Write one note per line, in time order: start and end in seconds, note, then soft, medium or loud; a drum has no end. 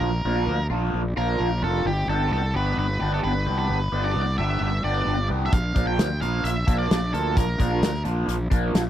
0.00 0.23 A#1 medium
0.00 0.66 A#4 medium
0.25 0.46 A#1 medium
0.25 0.55 F3 medium
0.25 0.55 A#3 medium
0.25 0.55 D4 medium
0.25 0.55 F4 medium
0.47 0.69 D2 medium
0.70 0.92 A#1 medium
0.70 1.01 F3 medium
0.70 1.01 A#3 medium
0.70 1.01 D4 medium
0.70 1.00 F4 medium
0.93 1.15 A#1 medium
1.17 1.39 A#1 medium
1.17 1.47 F3 medium
1.17 1.47 A#3 medium
1.17 1.47 D4 medium
1.17 1.46 F4 medium
1.17 1.63 A#4 medium
1.40 1.61 A#1 medium
1.62 1.84 F1 medium
1.62 1.86 F3 medium
1.62 1.86 A#3 medium
1.62 1.86 D4 medium
1.62 1.85 F4 medium
1.62 1.87 A4 medium
1.85 2.07 G1 medium
1.85 2.08 G4 medium
2.07 2.30 G1 medium
2.07 2.39 B3 medium
2.07 2.39 D4 medium
2.07 2.38 G4 medium
2.07 2.30 A4 medium
2.31 2.53 C2 medium
2.31 2.53 A4 medium
2.54 2.76 G1 medium
2.54 2.85 B3 medium
2.54 2.85 D4 medium
2.54 2.84 G4 medium
2.54 2.77 B4 medium
2.77 2.99 G1 medium
2.77 3.13 B4 medium
3.00 3.23 G1 medium
3.00 3.31 B3 medium
3.00 3.30 D4 medium
3.00 3.30 G4 medium
3.14 3.19 A4 medium
3.24 3.46 G1 medium
3.24 3.57 B4 medium
3.46 3.68 C2 medium
3.46 3.77 B3 medium
3.46 3.76 D4 medium
3.46 3.76 G4 medium
3.59 4.05 B4 medium
3.70 3.91 G1 medium
3.92 4.14 G1 medium
3.92 4.23 B3 medium
3.92 4.22 D4 medium
3.92 4.22 G4 medium
4.04 4.36 D5 medium
4.16 4.37 C2 medium
4.38 4.60 G1 medium
4.38 4.69 B3 medium
4.38 4.68 D4 medium
4.38 4.68 G4 medium
4.38 4.84 E5 medium
4.61 4.83 G1 medium
4.84 5.06 G1 medium
4.84 5.15 B3 medium
4.84 5.14 D4 medium
4.84 5.14 G4 medium
4.84 5.27 D5 medium
5.07 5.29 G1 medium
5.29 5.52 C2 medium
5.29 5.53 B3 medium
5.29 5.52 D4 medium
5.29 5.52 G4 medium
5.46 5.53 E5 medium
5.53 5.74 A#1 medium
5.53 5.87 F5 medium
5.53 kick medium
5.53 closed hi-hat medium
5.75 5.98 A#1 medium
5.75 6.06 F3 medium
5.75 6.05 A#3 medium
5.75 6.05 D4 medium
5.75 kick medium
5.75 closed hi-hat medium
5.87 6.21 G5 loud
5.98 6.20 D2 medium
5.98 snare loud
5.98 closed hi-hat medium
6.21 6.44 A#1 medium
6.21 6.52 F3 medium
6.21 6.52 A#3 medium
6.21 6.51 D4 medium
6.21 6.45 F5 medium
6.21 closed hi-hat medium
6.44 6.66 A#1 medium
6.44 6.78 E5 medium
6.44 closed hi-hat medium
6.67 6.89 A#1 medium
6.67 6.98 F3 medium
6.67 6.97 A#3 medium
6.67 6.97 D4 medium
6.67 kick medium
6.67 closed hi-hat medium
6.79 7.11 D5 medium
6.91 7.13 A#1 medium
6.91 snare loud
6.91 closed hi-hat medium
7.12 7.35 D2 medium
7.12 7.43 F3 medium
7.12 7.43 A#3 medium
7.12 7.43 D4 medium
7.12 7.37 A4 medium
7.12 closed hi-hat medium
7.37 7.58 A#1 medium
7.37 8.02 A#4 medium
7.37 kick medium
7.37 closed hi-hat medium
7.59 7.81 A#1 medium
7.59 7.89 F3 medium
7.59 7.89 A#3 medium
7.59 7.89 D4 medium
7.59 kick medium
7.59 closed hi-hat medium
7.82 8.04 D2 medium
7.82 snare loud
7.82 closed hi-hat medium
7.94 snare soft
8.04 8.27 A#1 medium
8.04 8.35 F3 medium
8.04 8.35 A#3 medium
8.04 8.35 D4 medium
8.04 closed hi-hat medium
8.28 8.50 A#1 medium
8.28 closed hi-hat medium
8.50 8.73 A#1 medium
8.50 8.81 F3 medium
8.50 8.81 A#3 medium
8.50 8.80 D4 medium
8.50 kick medium
8.50 closed hi-hat medium
8.74 8.90 A#1 medium
8.74 snare loud
8.74 closed hi-hat medium